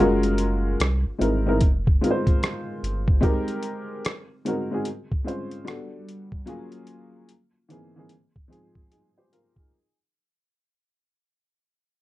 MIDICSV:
0, 0, Header, 1, 4, 480
1, 0, Start_track
1, 0, Tempo, 810811
1, 1909, Time_signature, 4, 2, 24, 8
1, 7111, End_track
2, 0, Start_track
2, 0, Title_t, "Upright piano"
2, 0, Program_c, 0, 0
2, 0, Note_on_c, 0, 56, 121
2, 0, Note_on_c, 0, 61, 90
2, 0, Note_on_c, 0, 65, 106
2, 0, Note_on_c, 0, 66, 97
2, 1, Note_on_c, 0, 70, 117
2, 117, Control_c, 0, 64, 127
2, 463, Note_off_c, 0, 56, 0
2, 465, Note_off_c, 0, 61, 0
2, 467, Note_off_c, 0, 65, 0
2, 469, Note_off_c, 0, 66, 0
2, 471, Note_off_c, 0, 70, 0
2, 477, Control_c, 0, 64, 0
2, 562, Control_c, 0, 64, 127
2, 701, Note_on_c, 0, 56, 69
2, 706, Note_on_c, 0, 60, 74
2, 710, Note_on_c, 0, 63, 69
2, 715, Note_on_c, 0, 64, 65
2, 719, Note_on_c, 0, 70, 82
2, 808, Note_off_c, 0, 56, 0
2, 810, Note_off_c, 0, 60, 0
2, 812, Note_off_c, 0, 63, 0
2, 815, Note_off_c, 0, 64, 0
2, 817, Note_off_c, 0, 70, 0
2, 864, Note_on_c, 0, 56, 71
2, 869, Note_on_c, 0, 60, 76
2, 873, Note_on_c, 0, 63, 65
2, 877, Note_on_c, 0, 64, 75
2, 880, Note_on_c, 0, 70, 95
2, 949, Note_off_c, 0, 56, 0
2, 951, Note_off_c, 0, 60, 0
2, 953, Note_off_c, 0, 63, 0
2, 955, Note_off_c, 0, 64, 0
2, 957, Note_off_c, 0, 70, 0
2, 958, Control_c, 0, 64, 0
2, 1077, Control_c, 0, 64, 127
2, 1192, Note_on_c, 0, 56, 87
2, 1196, Note_on_c, 0, 60, 70
2, 1200, Note_on_c, 0, 63, 72
2, 1204, Note_on_c, 0, 65, 78
2, 1208, Note_on_c, 0, 70, 66
2, 1247, Note_on_c, 0, 72, 85
2, 1249, Note_off_c, 0, 70, 0
2, 1666, Note_off_c, 0, 56, 0
2, 1668, Note_off_c, 0, 60, 0
2, 1670, Note_off_c, 0, 63, 0
2, 1672, Note_off_c, 0, 65, 0
2, 1694, Note_off_c, 0, 72, 0
2, 1898, Note_on_c, 0, 56, 113
2, 1903, Note_on_c, 0, 60, 88
2, 1907, Note_on_c, 0, 63, 105
2, 1911, Note_on_c, 0, 67, 103
2, 1915, Note_on_c, 0, 70, 123
2, 1917, Control_c, 0, 64, 0
2, 2029, Control_c, 0, 64, 127
2, 2379, Note_off_c, 0, 56, 0
2, 2382, Note_off_c, 0, 60, 0
2, 2384, Note_off_c, 0, 63, 0
2, 2386, Note_off_c, 0, 67, 0
2, 2388, Note_off_c, 0, 70, 0
2, 2396, Control_c, 0, 64, 0
2, 2491, Control_c, 0, 64, 127
2, 2635, Note_on_c, 0, 56, 73
2, 2638, Note_on_c, 0, 60, 67
2, 2643, Note_on_c, 0, 63, 69
2, 2647, Note_on_c, 0, 66, 70
2, 2651, Note_on_c, 0, 70, 80
2, 2735, Note_off_c, 0, 56, 0
2, 2736, Note_off_c, 0, 60, 0
2, 2739, Note_off_c, 0, 63, 0
2, 2741, Note_off_c, 0, 66, 0
2, 2743, Note_off_c, 0, 70, 0
2, 2790, Note_on_c, 0, 56, 73
2, 2794, Note_on_c, 0, 60, 68
2, 2799, Note_on_c, 0, 63, 68
2, 2803, Note_on_c, 0, 66, 65
2, 2806, Note_on_c, 0, 68, 83
2, 2872, Note_off_c, 0, 56, 0
2, 2874, Note_off_c, 0, 60, 0
2, 2876, Note_off_c, 0, 63, 0
2, 2877, Control_c, 0, 64, 0
2, 2878, Note_off_c, 0, 66, 0
2, 2880, Note_off_c, 0, 68, 0
2, 2966, Control_c, 0, 64, 127
2, 3104, Note_on_c, 0, 56, 78
2, 3110, Note_on_c, 0, 60, 70
2, 3114, Note_on_c, 0, 61, 64
2, 3118, Note_on_c, 0, 65, 71
2, 3122, Note_on_c, 0, 72, 77
2, 3342, Note_on_c, 0, 55, 82
2, 3347, Note_off_c, 0, 56, 0
2, 3347, Note_on_c, 0, 59, 66
2, 3350, Note_off_c, 0, 60, 0
2, 3352, Note_off_c, 0, 61, 0
2, 3352, Note_on_c, 0, 62, 69
2, 3354, Note_off_c, 0, 65, 0
2, 3356, Note_off_c, 0, 72, 0
2, 3356, Control_c, 0, 64, 0
2, 3356, Note_on_c, 0, 66, 79
2, 3360, Note_on_c, 0, 69, 84
2, 3466, Control_c, 0, 64, 127
2, 3759, Note_off_c, 0, 55, 0
2, 3761, Note_off_c, 0, 59, 0
2, 3763, Note_off_c, 0, 62, 0
2, 3765, Note_off_c, 0, 66, 0
2, 3767, Note_off_c, 0, 69, 0
2, 3822, Note_on_c, 0, 54, 101
2, 3827, Note_on_c, 0, 58, 91
2, 3831, Note_on_c, 0, 61, 95
2, 3834, Note_on_c, 0, 65, 94
2, 3838, Control_c, 0, 64, 0
2, 3839, Note_on_c, 0, 68, 105
2, 3954, Control_c, 0, 64, 127
2, 4301, Note_off_c, 0, 54, 0
2, 4304, Note_off_c, 0, 58, 0
2, 4306, Note_off_c, 0, 61, 0
2, 4307, Note_off_c, 0, 65, 0
2, 4310, Note_off_c, 0, 68, 0
2, 4317, Control_c, 0, 64, 0
2, 4425, Control_c, 0, 64, 127
2, 4549, Note_on_c, 0, 52, 74
2, 4553, Note_on_c, 0, 58, 61
2, 4557, Note_on_c, 0, 60, 63
2, 4561, Note_on_c, 0, 63, 66
2, 4566, Note_on_c, 0, 68, 81
2, 4652, Note_off_c, 0, 52, 0
2, 4654, Note_off_c, 0, 58, 0
2, 4656, Note_off_c, 0, 60, 0
2, 4658, Note_off_c, 0, 63, 0
2, 4660, Note_off_c, 0, 68, 0
2, 4711, Note_on_c, 0, 52, 75
2, 4714, Note_on_c, 0, 58, 64
2, 4720, Note_on_c, 0, 60, 69
2, 4723, Note_on_c, 0, 63, 74
2, 4728, Note_on_c, 0, 68, 79
2, 4792, Note_off_c, 0, 52, 0
2, 4794, Note_off_c, 0, 58, 0
2, 4797, Note_off_c, 0, 60, 0
2, 4798, Note_off_c, 0, 63, 0
2, 4798, Control_c, 0, 64, 0
2, 4801, Note_off_c, 0, 68, 0
2, 4895, Control_c, 0, 64, 127
2, 5020, Note_on_c, 0, 53, 70
2, 5025, Note_on_c, 0, 56, 65
2, 5030, Note_on_c, 0, 60, 68
2, 5033, Note_on_c, 0, 63, 65
2, 5038, Note_on_c, 0, 68, 77
2, 5269, Note_off_c, 0, 68, 0
2, 5271, Note_off_c, 0, 63, 0
2, 5278, Note_on_c, 0, 68, 62
2, 5281, Note_on_c, 0, 63, 50
2, 5422, Note_off_c, 0, 68, 0
2, 5424, Note_off_c, 0, 63, 0
2, 5433, Note_on_c, 0, 72, 58
2, 5437, Note_on_c, 0, 67, 51
2, 5500, Note_off_c, 0, 53, 0
2, 5503, Note_off_c, 0, 56, 0
2, 5505, Note_off_c, 0, 60, 0
2, 5509, Note_off_c, 0, 72, 0
2, 5511, Note_off_c, 0, 67, 0
2, 5522, Note_on_c, 0, 70, 65
2, 5526, Note_on_c, 0, 65, 52
2, 5664, Note_off_c, 0, 70, 0
2, 5666, Note_off_c, 0, 65, 0
2, 5675, Note_on_c, 0, 68, 54
2, 5678, Note_on_c, 0, 63, 54
2, 5758, Control_c, 0, 64, 0
2, 5898, Note_off_c, 0, 68, 0
2, 5900, Note_off_c, 0, 63, 0
2, 7111, End_track
3, 0, Start_track
3, 0, Title_t, "Sub bass"
3, 0, Program_c, 1, 38
3, 0, Note_on_c, 1, 30, 98
3, 448, Note_off_c, 1, 30, 0
3, 473, Note_on_c, 1, 36, 91
3, 617, Note_off_c, 1, 36, 0
3, 630, Note_on_c, 1, 32, 47
3, 662, Note_off_c, 1, 32, 0
3, 714, Note_on_c, 1, 32, 92
3, 957, Note_on_c, 1, 29, 101
3, 966, Note_off_c, 1, 32, 0
3, 1178, Note_off_c, 1, 29, 0
3, 1675, Note_on_c, 1, 31, 84
3, 1896, Note_off_c, 1, 31, 0
3, 7111, End_track
4, 0, Start_track
4, 0, Title_t, "Drums"
4, 138, Note_on_c, 9, 42, 58
4, 197, Note_off_c, 9, 42, 0
4, 225, Note_on_c, 9, 42, 67
4, 285, Note_off_c, 9, 42, 0
4, 474, Note_on_c, 9, 42, 77
4, 482, Note_on_c, 9, 37, 108
4, 533, Note_off_c, 9, 42, 0
4, 541, Note_off_c, 9, 37, 0
4, 719, Note_on_c, 9, 42, 61
4, 778, Note_off_c, 9, 42, 0
4, 951, Note_on_c, 9, 42, 80
4, 955, Note_on_c, 9, 36, 89
4, 1010, Note_off_c, 9, 42, 0
4, 1014, Note_off_c, 9, 36, 0
4, 1108, Note_on_c, 9, 36, 83
4, 1167, Note_off_c, 9, 36, 0
4, 1207, Note_on_c, 9, 42, 66
4, 1266, Note_off_c, 9, 42, 0
4, 1342, Note_on_c, 9, 36, 67
4, 1343, Note_on_c, 9, 42, 38
4, 1402, Note_off_c, 9, 36, 0
4, 1403, Note_off_c, 9, 42, 0
4, 1438, Note_on_c, 9, 42, 60
4, 1443, Note_on_c, 9, 37, 103
4, 1497, Note_off_c, 9, 42, 0
4, 1502, Note_off_c, 9, 37, 0
4, 1682, Note_on_c, 9, 42, 70
4, 1741, Note_off_c, 9, 42, 0
4, 1822, Note_on_c, 9, 36, 86
4, 1881, Note_off_c, 9, 36, 0
4, 1909, Note_on_c, 9, 36, 108
4, 1911, Note_on_c, 9, 42, 65
4, 1969, Note_off_c, 9, 36, 0
4, 1971, Note_off_c, 9, 42, 0
4, 2060, Note_on_c, 9, 42, 53
4, 2119, Note_off_c, 9, 42, 0
4, 2147, Note_on_c, 9, 42, 61
4, 2206, Note_off_c, 9, 42, 0
4, 2396, Note_on_c, 9, 42, 74
4, 2404, Note_on_c, 9, 37, 110
4, 2455, Note_off_c, 9, 42, 0
4, 2463, Note_off_c, 9, 37, 0
4, 2640, Note_on_c, 9, 42, 65
4, 2699, Note_off_c, 9, 42, 0
4, 2872, Note_on_c, 9, 42, 80
4, 2932, Note_off_c, 9, 42, 0
4, 3028, Note_on_c, 9, 36, 82
4, 3088, Note_off_c, 9, 36, 0
4, 3127, Note_on_c, 9, 42, 59
4, 3186, Note_off_c, 9, 42, 0
4, 3264, Note_on_c, 9, 42, 40
4, 3323, Note_off_c, 9, 42, 0
4, 3359, Note_on_c, 9, 42, 52
4, 3364, Note_on_c, 9, 37, 90
4, 3419, Note_off_c, 9, 42, 0
4, 3423, Note_off_c, 9, 37, 0
4, 3603, Note_on_c, 9, 42, 67
4, 3662, Note_off_c, 9, 42, 0
4, 3741, Note_on_c, 9, 36, 78
4, 3801, Note_off_c, 9, 36, 0
4, 3831, Note_on_c, 9, 42, 68
4, 3890, Note_off_c, 9, 42, 0
4, 3978, Note_on_c, 9, 42, 53
4, 4037, Note_off_c, 9, 42, 0
4, 4066, Note_on_c, 9, 42, 63
4, 4125, Note_off_c, 9, 42, 0
4, 4314, Note_on_c, 9, 42, 73
4, 4373, Note_off_c, 9, 42, 0
4, 4559, Note_on_c, 9, 42, 65
4, 4618, Note_off_c, 9, 42, 0
4, 4791, Note_on_c, 9, 42, 81
4, 4850, Note_off_c, 9, 42, 0
4, 4948, Note_on_c, 9, 36, 83
4, 5007, Note_off_c, 9, 36, 0
4, 5047, Note_on_c, 9, 42, 62
4, 5107, Note_off_c, 9, 42, 0
4, 5182, Note_on_c, 9, 36, 59
4, 5241, Note_off_c, 9, 36, 0
4, 5278, Note_on_c, 9, 42, 62
4, 5338, Note_off_c, 9, 42, 0
4, 5523, Note_on_c, 9, 42, 64
4, 5582, Note_off_c, 9, 42, 0
4, 5662, Note_on_c, 9, 36, 77
4, 5721, Note_off_c, 9, 36, 0
4, 7111, End_track
0, 0, End_of_file